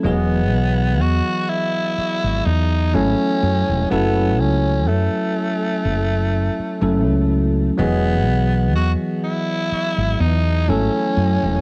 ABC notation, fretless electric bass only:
X:1
M:4/4
L:1/16
Q:"Swing 16ths" 1/4=62
K:E
V:1 name="Fretless electric bass" clef=bass
E,,,2 B,,,2 E,, z4 G,,, E,,2 G,,, z F,, E,,, | F,,,2 C,,2 F,, z3 F,,,3 z F,,, C,,3 | E,,,2 B,,,2 E,, z4 G,,, E,,2 G,,, z F,, E,,, |]